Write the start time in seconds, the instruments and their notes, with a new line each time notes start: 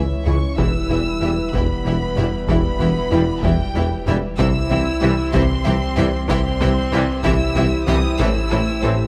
Already playing: analog synth bass C#2, sub bass C#2, french horn section E3, analog synth pad E3 G#3 E4 C#5, violin section E5
0.25 cello section C#2, analog synth bass C#2, double bass section C#2, tuba C#2, viola section E3 E4, synth arpeggio sound E3, trombone section E3 G#3, french horn section C#4, violin section G#4 E5 C#6, taiko low-mid
0.57 sub bass E1, double bass section E1, tuba E1, cello section E2, analog synth bass E2, analog synth pad E3 G3 E4 B4, synth arpeggio sound E3, viola section E3 E4, french horn section E4, violin section G4 E5 E6, taiko
0.90 double bass section E1, tuba E1, cello section E2, viola section E3 E4, analog synth bass E3, synth arpeggio sound B3, violin section G4 E5
1.21 tuba E1, double bass section E1, cello section E2, analog synth bass E2, viola section E3 E4, trombone section E3 G3, synth arpeggio sound E4, violin section G4 E5
1.52 tuba E1, double bass section E1, cello section E2, analog synth bass E2, viola section E3 E4, synth arpeggio sound E3, french horn section B3, violin section G4 E5 B5, taiko
1.85 double bass section E1, tuba E1, cello section E2, analog synth bass E2, viola section E3 E4, violin section G4 E5
2.16 tuba E1, double bass section E1, analog synth bass E2, cello section E2, trombone section E3 G3, viola section E3 E4, synth arpeggio sound G3, violin section G4 E5, taiko low-mid
2.47 tuba E1, double bass section E1, analog synth bass E2, cello section E2, viola section E3 E4, synth arpeggio sound E3, french horn section B3, violin section G4 E5 B5, taiko
2.80 double bass section E1, tuba E1, cello section E2, analog synth bass E3, viola section E3 E4, synth arpeggio sound B3, violin section G4 E5
3.11 double bass section E1, tuba E1, analog synth bass E2, cello section E2, trombone section E3 G3, viola section E3 E4, synth arpeggio sound E4, violin section G4 E5
3.42 double bass section E1, tuba E1, analog synth bass E2, cello section E2, viola section E3 E4, synth arpeggio sound E3, french horn section G3, violin section G4 E5 G5, taiko
3.74 tuba E1, double bass section E1, analog synth bass E2, cello section E2, viola section E3 E4, violin section G4 E5
4.06 tuba E1, double bass section E1, analog synth bass E2, cello section E2, viola section E3 E4, trombone section E3 G3, synth arpeggio sound G3, violin section G4 E5, taiko low-mid
4.37 analog synth bass C2, tuba C2, double bass section C2, sub bass C2, cello section C3, synth arpeggio sound C3, analog synth pad E3 G3 G4 C5, viola section E3 E4, french horn section E4, violin section G4 E5 E6, taiko
4.70 tuba C2, double bass section C2, analog synth bass C3, cello section C3, viola section E3 E4, synth arpeggio sound G3, violin section G4 E5
5.01 analog synth bass C2, tuba C2, double bass section C2, cello section C3, viola section E3 E4, trombone section E3 G3, synth arpeggio sound C4, violin section G4 E5
5.33 analog synth bass C2, tuba C2, double bass section C2, cello section C3, synth arpeggio sound C3, viola section E3 E4, french horn section C4, violin section G4 E5 C6, taiko
5.65 tuba C2, analog synth bass C2, double bass section C2, cello section C3, viola section E3 E4, violin section G4 E5
5.97 analog synth bass C2, double bass section C2, tuba C2, cello section C3, synth arpeggio sound E3, viola section E3 E4, trombone section E3 G3, violin section G4 E5, taiko low-mid
6.28 analog synth bass C2, tuba C2, double bass section C2, cello section C3, synth arpeggio sound C3, viola section E3 E4, french horn section C4, violin section G4 E5 C6, taiko
6.60 tuba C2, double bass section C2, analog synth bass C3, cello section C3, viola section E3 E4, synth arpeggio sound G3, violin section G4 E5, taiko rim
6.92 analog synth bass C2, tuba C2, double bass section C2, cello section C3, trombone section E3 G3, viola section E3 E4, synth arpeggio sound C4, violin section G4 E5
7.23 analog synth bass C2, tuba C2, double bass section C2, synth arpeggio sound C3, cello section C3, viola section E3 E4, french horn section E4, violin section G4 E5 E6, taiko
7.55 analog synth bass C2, tuba C2, double bass section C2, cello section C3, viola section E3 E4, violin section G4 E5
7.87 analog synth bass C2, double bass section C2, tuba C2, cello section C3, viola section E3 E4, synth arpeggio sound E3, trombone section E3 G3, french horn section E4, violin section G4 E5 D#6, taiko low-mid
8.18 double bass section A1, tuba A1, sub bass A1, analog synth bass A2, cello section A2, viola section E3 E4, synth arpeggio sound A3, analog synth pad A3, french horn section E4, violin section A4 C5 E6, taiko
8.50 tuba A1, double bass section A1, cello section A2, viola section E3 E4, analog synth bass A3, synth arpeggio sound E4, violin section A4 C5, taiko rim
8.81 double bass section A1, tuba A1, cello section A2, analog synth bass A2, viola section E3 E4, trombone section E3 C4, violin section A4 C5, synth arpeggio sound A4